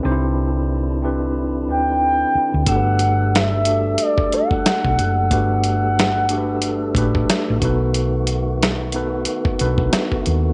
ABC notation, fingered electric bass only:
X:1
M:4/4
L:1/16
Q:"Swing 16ths" 1/4=91
K:G
V:1 name="Fingered electric bass" clef=bass
C,,8- C,,2 D,,4 z D,, | G,,,8 z4 z B,,, F,,,2 | G,,,8- G,,,2 A,,,2 z A,,, B,,,2- | B,,,8- B,,,2 B,,,2 z2 ^D,,2 |]